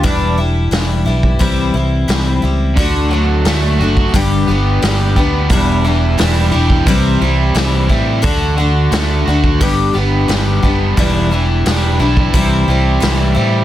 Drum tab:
HH |o---o---o---o---|o---o---o---o---|o---o---o---o---|o---o---o---o---|
SD |----o-------o---|----o-------o---|----o-------o---|----o-------o---|
BD |o------oo-------|o------oo-----o-|o------oo-----o-|o------oo-----o-|

HH |o---o---o---o---|
SD |----o-------o---|
BD |o------oo-------|